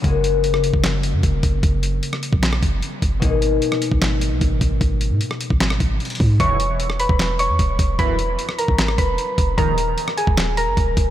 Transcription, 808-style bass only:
X:1
M:4/4
L:1/16
Q:1/4=151
K:Elyd
V:1 name="808-style bass" clef=bass
F,,,6- F,,, F,,,4 F,, E,,,2 F,,,2 | F,,,4 z3 A,,,3 F,,,2 z2 F,,,2 | G,,,4 z3 G,,,4 B,,, G,,,2 G,,,2 | G,,,3 G,, z3 G,,,3 G,,,2 z2 G,,2 |
E,,,6- E,,, E,,,4 E,, D,,,2 E,,,2 | E,,,4 z3 G,,,3 E,,,2 z2 E,,,2 | D,,,4 z3 D,,,4 F,,, D,,,2 D,,,2 |]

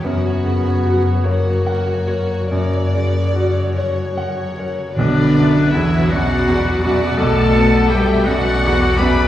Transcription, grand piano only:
X:1
M:12/8
L:1/8
Q:3/8=52
K:Bm
V:1 name="Grand piano" clef=bass
F,, C, F c f c F,, C, F c f c | B,,, F,, E,, F,, E,, F,, B,,, B, A, F,, E,, F,, |]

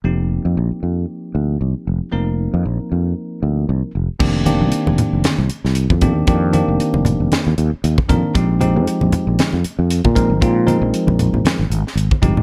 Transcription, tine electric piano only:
X:1
M:4/4
L:1/8
Q:"Swing 16ths" 1/4=116
K:Fdor
V:1 name="Tine electric piano"
[F,B,CEG]8 | [F,B,CEB]6- [F,B,CEB] z | [E,B,CDG] [E,B,CDG]4 z2 [E,B,CDG] | [E,B,CDG] [E,B,CDG]4 z2 [E,B,CDB] |
[F,A,CEG] [F,A,CEG]4 z2 [F,A,CEB] | [F,A,CEF] [F,A,CEB]4 z2 [F,A,CEG] |]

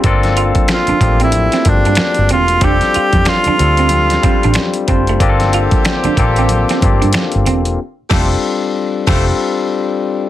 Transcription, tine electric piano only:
X:1
M:4/4
L:1/8
Q:"Swing 16ths" 1/4=93
K:Gdor
V:1 name="Tine electric piano"
[B,CDFA]3 [F,A,B,CDG]2 [B,CDF_G=G]3 | [G,CDFA]3 [G,CDFA]2 [G,CDFc]2 [G,CDFc] | [B,CDFGA]3 [B,CDFA]2 [B,CDFG]3 | z [G,CDFA] z2 [G,CDFA] z3 |]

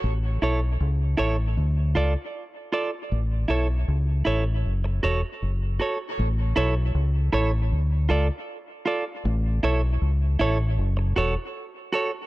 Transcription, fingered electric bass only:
X:1
M:4/4
L:1/16
Q:1/4=78
K:A
V:1 name="Fingered electric bass" clef=bass
A,,,2 B,,,2 C,,2 A,,,2 D,,2 C,, z4 z | A,,,2 B,,,2 C,,2 A,,,2 F,,,2 E,,, z F,,,2 z2 | A,,,2 B,,,2 C,,2 A,,,2 D,,2 C,, z4 z | A,,,2 B,,,2 C,,2 A,,,2 F,,,2 E,,, z4 z |]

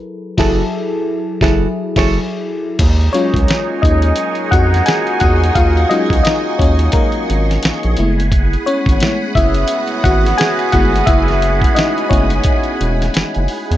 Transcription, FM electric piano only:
X:1
M:4/4
L:1/16
Q:"Swing 16ths" 1/4=87
K:Ebm
V:1 name="FM electric piano"
z2 [G,_FA=A]2 z4 [G,F_A]2 z [G,FA]2 z3 | z2 [Dd]4 [Ee]4 [Gg]2 [Aa]2 [Gg]2 | [Ff]2 [Ee]2 [Ee]2 [Dd]2 [B,B]6 z2 | z2 [Dd]4 [_F_f]4 [Gg]2 [Aa]2 [Gg]2 |
[_F_f]4 [Ee]2 [Dd]8 z2 |]
V:2 name="FM electric piano"
z16 | z2 [G,A,DF]6 z8 | z2 [G,A,DF]12 [A,=A,C_F]2 | z4 [A,=A,C_F]2 z8 [_A,=A,CF]2 |
z6 [A,=A,C_F]2 z8 |]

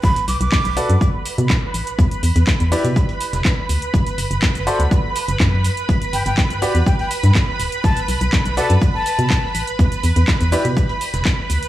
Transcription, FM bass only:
X:1
M:4/4
L:1/16
Q:1/4=123
K:Bphr
V:1 name="FM bass" clef=bass
B,,, z B,,, B,,, z B,,, z F,, z3 B,, z2 A,,, z | E,, z E,, E,, z E,, z B,, z3 E,,, z2 D,, z | F,,, z F,,, F,,, z F,,, z D,, z3 F,,, F,,2 z2 | G,,, z G,,, G,,, z G,,, z E,, z3 G,, z2 D,,, z |
B,,, z B,,, B,,, z B,,, z F,, z3 B,, z2 A,,, z | E,, z E,, E,, z E,, z B,, z3 E,,, z2 D,, z |]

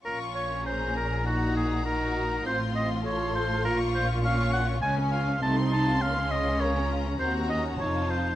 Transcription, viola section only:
X:1
M:2/4
L:1/8
Q:1/4=101
K:Bbm
V:1 name="Viola section"
D4 | E2 E2 | C2 F2- | F2 D2 |
D2 E2 | D4 | C D E2 |]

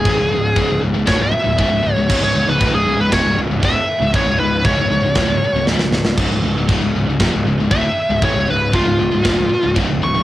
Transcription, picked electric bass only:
X:1
M:4/4
L:1/16
Q:1/4=117
K:none
V:1 name="Picked electric bass" clef=bass
A,,, ^C,,, C,,,2 C,,, C,,, C,,, C,,, D,,, C,,, z C,,, C,,, C,,, C,,, C,,, | ^C,,, C,,, C,,, C,,, D,,, C,,, C,,, C,,, ^E,,, C,,, C,,, C,,, D,,, z2 C,,, | A,,, ^C,,, C,,,2 C,,, C,,, C,,, C,,, D,,, C,,, z C,,, C,,, C,,, C,,, C,,, | ^C,,, C,,, C,,, C,,, D,,, C,,, C,,, C,,, ^E,,, C,,, C,,, C,,, D,,, z2 C,,, |
A,,, ^C,,, C,,,2 C,,, C,,, C,,, C,,, D,,, C,,, z C,,, C,,, C,,, C,,, C,,, |]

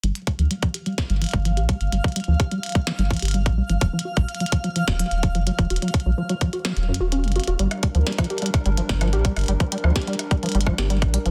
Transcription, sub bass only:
X:1
M:4/4
L:1/16
Q:1/4=127
K:Gm
V:1 name="Sub bass" clef=bass
G,,, z2 D,, z4 z G,,, z G,,,2 B,,, z G,,, | G,,, z2 D,, z4 z G,,, z G,,,2 B,,, z G,,, | E,,, z2 B,,, z4 z E,,, z E,,,2 _G,,, z E,,, | E,,, z2 B,,, z4 z E,,, z E,,,2 _G,,, z E,,, |
G,,, z2 D,, z4 z G,,, z G,,,2 B,,, z G,,, | G,,, z2 D,, z4 z G,,, z G,,,2 B,,, z G,,, |]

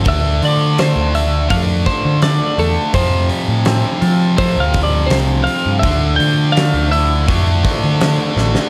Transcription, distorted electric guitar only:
X:1
M:4/4
L:1/8
Q:1/4=83
K:Dm
V:1 name="Distorted electric guitar" clef=bass
[D,A,D]4 [D,A,D]4 | [F,,C,F,]4 [F,,C,F,]4 | [D,A,D]4 [D,A,D]4 |]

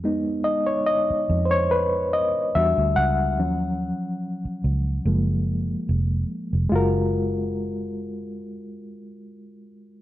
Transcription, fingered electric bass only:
X:1
M:4/4
L:1/16
Q:"Swing 16ths" 1/4=72
K:F#
V:1 name="Fingered electric bass" clef=bass
=F,,3 z3 F,,4- F,, z =E,, =D,, C,,2 | D,,3 z3 C,,2 F,,,4 E,,,2 z E,,, | F,,,16 |]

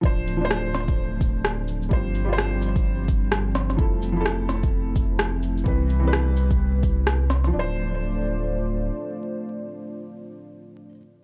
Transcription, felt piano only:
X:1
M:4/4
L:1/16
Q:"Swing 16ths" 1/4=128
K:Ddor
V:1 name="Felt piano"
[F,Dc]3 [F,Dc]12- [F,Dc] | [G,Fc]3 [G,Fc]12- [G,Fc] | [F,EA]3 [F,EA]12- [F,EA] | [E,CB]3 [E,CB]12- [E,CB] |
[F,Dc]16- | [F,Dc]16 |]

